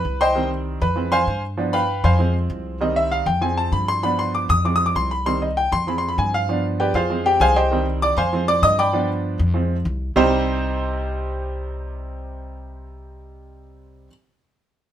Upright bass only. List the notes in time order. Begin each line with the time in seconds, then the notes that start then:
0.05 C2
0.81 F2
1.27 G2
2.04 F2
2.50 C2
3.26 F2
3.72 G2
4.49 F2
4.95 C2
5.72 F2
6.18 G2
6.94 F2
7.40 C2
8.17 F2
8.62 G2
9.39 F2
9.85 C2
10.16 C2